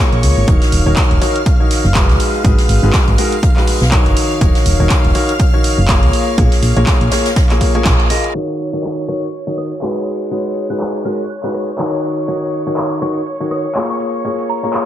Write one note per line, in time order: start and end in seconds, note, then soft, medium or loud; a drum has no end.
0.00 0.45 A#3 medium
0.00 0.45 F4 medium
0.00 0.45 G#4 medium
0.00 0.45 A#4 medium
0.00 0.45 C#5 loud
0.00 0.49 C#5 medium
0.00 0.49 C#6 medium
0.13 0.25 A#1 medium
0.13 closed hi-hat soft
0.23 0.34 C#2 medium
0.23 closed hi-hat medium
0.23 open hi-hat loud
0.37 0.46 G#1 medium
0.48 0.59 D#1 loud
0.48 0.83 D#3 medium
0.48 0.83 D#4 medium
0.48 0.83 F#4 medium
0.48 0.83 A#4 medium
0.48 0.83 C#5 medium
0.48 8.36 F5 medium
0.48 8.36 F6 medium
0.48 kick loud
0.48 closed hi-hat medium
0.62 snare soft
0.62 open hi-hat medium
0.72 0.84 D#1 medium
0.72 closed hi-hat medium
0.72 open hi-hat loud
0.86 0.95 D#1 loud
0.86 1.19 D#3 medium
0.86 1.19 D#4 medium
0.86 1.19 F#4 medium
0.86 1.19 A#4 medium
0.86 1.19 C#5 medium
0.96 kick loud
0.96 snare loud
0.96 clap loud
0.96 closed hi-hat medium
1.11 1.19 D#1 medium
1.11 closed hi-hat soft
1.22 1.38 D#3 medium
1.22 1.38 D#4 medium
1.22 1.38 F#4 medium
1.22 1.38 A#4 medium
1.22 1.38 C#5 medium
1.22 closed hi-hat medium
1.22 open hi-hat loud
1.36 closed hi-hat soft
1.46 kick loud
1.46 closed hi-hat medium
1.60 1.84 D#3 medium
1.60 1.84 D#4 medium
1.60 1.84 F#4 medium
1.60 1.84 A#4 medium
1.60 1.84 C#5 medium
1.71 snare soft
1.71 closed hi-hat medium
1.71 open hi-hat loud
1.84 2.11 F#1 medium
1.84 snare soft
1.95 2.42 G#3 medium
1.95 2.42 D#4 medium
1.95 2.42 F#4 medium
1.95 2.42 G#4 medium
1.95 2.42 B4 loud
1.95 kick loud
1.95 snare loud
1.95 clap loud
1.95 closed hi-hat medium
1.95 closed hi-hat loud
2.09 2.18 C#2 medium
2.09 snare soft
2.09 closed hi-hat soft
2.19 closed hi-hat medium
2.19 open hi-hat loud
2.34 closed hi-hat soft
2.45 2.56 G#1 loud
2.45 2.80 G#3 medium
2.45 2.80 D#4 medium
2.45 2.80 F#4 medium
2.45 2.80 G#4 medium
2.45 2.80 B4 medium
2.45 kick loud
2.45 closed hi-hat medium
2.58 snare soft
2.58 open hi-hat medium
2.69 2.80 G#1 medium
2.69 closed hi-hat medium
2.69 open hi-hat medium
2.83 2.92 G#1 loud
2.83 3.16 G#3 medium
2.83 3.16 D#4 medium
2.83 3.16 F#4 medium
2.83 3.16 G#4 medium
2.83 3.16 B4 medium
2.93 kick loud
2.93 snare loud
2.93 clap loud
2.93 closed hi-hat medium
3.08 3.16 G#1 medium
3.08 closed hi-hat soft
3.18 3.34 G#3 medium
3.18 3.34 D#4 medium
3.18 3.34 F#4 medium
3.18 3.34 G#4 medium
3.18 3.34 A#4 medium
3.18 closed hi-hat medium
3.18 open hi-hat loud
3.32 closed hi-hat soft
3.43 kick loud
3.43 closed hi-hat medium
3.56 3.80 G#3 medium
3.56 3.80 D#4 medium
3.56 3.80 F#4 medium
3.56 3.80 G#4 medium
3.56 3.80 B4 medium
3.56 snare soft
3.56 clap soft
3.67 open hi-hat medium
3.81 4.08 B1 medium
3.81 snare soft
3.92 4.39 D#3 medium
3.92 4.39 D#4 medium
3.92 4.39 F#4 medium
3.92 4.39 A#4 medium
3.92 4.39 C#5 loud
3.92 kick loud
3.92 snare loud
3.92 clap loud
3.92 closed hi-hat medium
4.06 4.15 F#1 medium
4.06 closed hi-hat soft
4.17 closed hi-hat medium
4.17 open hi-hat loud
4.41 4.52 D#1 loud
4.41 4.76 D#3 medium
4.41 4.76 D#4 medium
4.41 4.76 F#4 medium
4.41 4.76 A#4 medium
4.41 4.77 C#5 medium
4.41 kick loud
4.41 closed hi-hat medium
4.55 snare soft
4.55 open hi-hat medium
4.66 4.77 D#1 medium
4.66 closed hi-hat medium
4.66 open hi-hat loud
4.80 4.88 D#1 loud
4.80 5.12 D#3 medium
4.80 5.13 D#4 medium
4.80 5.12 F#4 medium
4.80 5.12 A#4 medium
4.80 5.12 C#5 medium
4.90 kick loud
4.90 snare loud
4.90 clap loud
4.90 closed hi-hat medium
5.04 5.13 D#1 medium
5.04 closed hi-hat soft
5.15 5.31 D#3 medium
5.15 5.31 D#4 medium
5.15 5.31 F#4 medium
5.15 5.31 A#4 medium
5.15 5.31 C#5 loud
5.15 open hi-hat loud
5.29 closed hi-hat medium
5.40 kick loud
5.40 closed hi-hat medium
5.54 5.77 D#3 medium
5.54 5.77 D#4 medium
5.54 5.77 F#4 medium
5.54 5.77 A#4 medium
5.54 5.77 C#5 medium
5.64 closed hi-hat medium
5.64 open hi-hat loud
5.78 6.04 F#1 medium
5.88 6.35 A#3 medium
5.88 6.35 F4 medium
5.88 6.35 G#4 medium
5.88 6.35 A#4 medium
5.88 6.35 C#5 loud
5.88 kick loud
5.88 snare loud
5.88 clap loud
5.88 closed hi-hat medium
6.03 6.11 C#2 medium
6.03 closed hi-hat soft
6.13 open hi-hat loud
6.38 6.49 A#1 loud
6.38 6.73 A#3 medium
6.38 6.73 F4 medium
6.38 6.73 G#4 medium
6.38 6.73 A#4 medium
6.38 6.73 C#5 medium
6.38 kick loud
6.38 closed hi-hat medium
6.52 snare soft
6.52 open hi-hat medium
6.63 6.74 A#1 medium
6.63 closed hi-hat medium
6.63 open hi-hat loud
6.77 6.85 A#1 loud
6.77 7.09 A#3 medium
6.77 7.09 F4 medium
6.77 7.09 G#4 medium
6.77 7.09 A#4 medium
6.77 7.09 C#5 medium
6.77 closed hi-hat soft
6.87 kick loud
6.87 snare loud
6.87 clap loud
6.87 closed hi-hat medium
7.01 7.10 A#1 medium
7.01 closed hi-hat soft
7.11 7.28 A#3 medium
7.11 7.28 F4 medium
7.11 7.28 G#4 medium
7.11 7.28 A#4 medium
7.11 7.28 C#5 medium
7.11 snare medium
7.11 closed hi-hat medium
7.11 open hi-hat loud
7.25 snare medium
7.25 closed hi-hat medium
7.36 kick loud
7.36 snare medium
7.36 closed hi-hat medium
7.50 7.72 A#3 medium
7.50 7.72 F4 medium
7.50 7.72 G#4 medium
7.50 7.72 A#4 medium
7.50 7.72 C#5 medium
7.50 snare soft
7.50 clap soft
7.50 closed hi-hat soft
7.61 kick medium
7.61 open hi-hat loud
7.75 8.08 A#3 medium
7.75 8.08 F4 medium
7.75 8.08 G#4 medium
7.75 8.08 A#4 medium
7.75 8.08 C#5 loud
7.75 closed hi-hat soft
7.85 7.97 A#1 loud
7.85 kick loud
7.85 snare loud
7.85 clap loud
7.85 closed hi-hat medium
8.00 closed hi-hat soft
8.10 8.32 F4 medium
8.10 8.32 G#4 medium
8.10 8.32 A#4 medium
8.10 8.32 D#5 loud
8.10 closed hi-hat medium
8.10 open hi-hat loud
8.24 closed hi-hat soft
8.35 8.70 D#3 medium
8.35 8.70 D#4 medium
8.35 8.70 F#4 medium
8.35 8.70 A#4 medium
8.35 8.70 C#5 medium
8.35 14.86 C#5 medium
8.35 14.86 C#6 medium
8.49 snare soft
8.59 open hi-hat medium
8.73 9.06 D#3 medium
8.73 9.06 D#4 medium
8.73 9.06 F#4 medium
8.73 9.06 A#4 medium
8.73 9.06 C#5 medium
8.83 clap loud
9.08 9.25 D#3 medium
9.08 9.25 D#4 medium
9.08 9.25 F#4 medium
9.08 9.25 A#4 medium
9.08 9.25 C#5 medium
9.08 9.30 C#6 medium
9.08 cross-stick medium
9.33 closed hi-hat medium
9.47 9.70 D#3 medium
9.47 9.70 D#4 medium
9.47 9.70 F#4 medium
9.47 9.70 A#4 medium
9.47 9.70 C#5 medium
9.58 9.79 D#6 medium
9.58 cross-stick medium
9.58 snare soft
9.58 open hi-hat medium
9.58 shaker medium
9.71 snare soft
9.82 10.29 G#3 medium
9.82 10.29 D#4 medium
9.82 10.29 F#4 medium
9.82 10.29 G#4 medium
9.82 10.29 B4 medium
9.82 clap loud
9.97 snare soft
10.31 10.67 G#3 medium
10.31 10.67 D#4 medium
10.31 10.67 F#4 medium
10.31 10.67 G#4 medium
10.31 10.67 B4 medium
10.31 closed hi-hat medium
10.45 snare soft
10.45 open hi-hat medium
10.56 closed hi-hat medium
10.56 open hi-hat loud
10.70 11.03 G#3 medium
10.70 11.03 D#4 medium
10.70 11.03 F#4 medium
10.70 11.03 G#4 medium
10.70 11.03 B4 medium
10.70 10.77 F#6 medium
10.80 10.90 F#6 medium
10.80 clap loud
11.05 11.21 G#3 medium
11.05 11.21 D#4 medium
11.05 11.21 F#4 medium
11.05 11.21 G#4 medium
11.05 11.21 A#4 medium
11.05 11.26 F#6 medium
11.05 open hi-hat loud
11.29 11.39 F#6 medium
11.29 closed hi-hat medium
11.43 11.67 G#3 medium
11.43 11.67 D#4 medium
11.43 11.67 F#4 medium
11.43 11.67 G#4 medium
11.43 11.67 B4 medium
11.43 11.51 F#6 medium
11.43 snare soft
11.43 clap soft
11.54 cross-stick medium
11.54 open hi-hat loud
11.54 shaker medium
11.68 snare soft
11.78 12.26 D#3 medium
11.78 12.26 D#4 medium
11.78 12.26 F#4 medium
11.78 12.26 A#4 medium
11.78 12.26 C#5 medium
11.78 clap loud
12.04 open hi-hat loud
12.04 shaker medium
12.18 shaker soft
12.28 12.63 D#3 medium
12.28 12.63 D#4 medium
12.28 12.63 F#4 medium
12.28 12.63 A#4 medium
12.28 12.63 C#5 medium
12.28 closed hi-hat medium
12.42 snare soft
12.42 open hi-hat medium
12.53 open hi-hat loud
12.53 shaker medium
12.67 12.99 D#3 medium
12.67 12.99 D#4 medium
12.67 12.99 F#4 medium
12.67 12.99 A#4 medium
12.67 12.99 C#5 medium
12.67 shaker soft
12.77 clap loud
12.77 closed hi-hat medium
12.91 closed hi-hat soft
13.02 13.18 D#3 medium
13.02 13.18 D#4 medium
13.02 13.18 F#4 medium
13.02 13.18 A#4 medium
13.02 13.18 C#5 medium
13.02 13.23 C#6 medium
13.02 cross-stick medium
13.02 open hi-hat loud
13.02 shaker medium
13.16 closed hi-hat soft
13.16 shaker soft
13.27 closed hi-hat medium
13.27 shaker soft
13.40 13.64 D#3 medium
13.40 13.64 D#4 medium
13.40 13.64 F#4 medium
13.40 13.64 A#4 medium
13.40 13.64 C#5 medium
13.51 13.72 D#6 medium
13.51 cross-stick medium
13.51 snare soft
13.51 open hi-hat loud
13.51 shaker medium
13.65 snare soft
13.65 shaker soft
13.75 14.22 A#3 medium
13.75 14.22 F4 medium
13.75 14.22 G#4 medium
13.75 14.22 A#4 medium
13.75 14.22 C#5 medium
13.75 clap loud
13.75 closed hi-hat medium
13.90 14.06 C#6 medium
13.90 snare soft
13.90 closed hi-hat soft
14.00 open hi-hat loud
14.00 shaker medium
14.14 closed hi-hat soft
14.14 shaker soft
14.25 14.60 A#3 medium
14.25 14.60 F4 medium
14.25 14.60 G#4 medium
14.25 14.60 A#4 medium
14.25 14.60 C#5 medium
14.25 closed hi-hat medium
14.25 shaker soft
14.39 snare soft
14.39 open hi-hat medium
14.49 14.58 A#5 medium
14.49 open hi-hat loud
14.49 shaker medium
14.63 14.86 A#3 medium
14.63 14.86 F4 medium
14.63 14.86 G#4 medium
14.63 14.86 A#4 medium
14.63 14.86 C#5 medium
14.63 14.70 A#5 medium
14.63 shaker soft
14.74 clap loud
14.74 closed hi-hat medium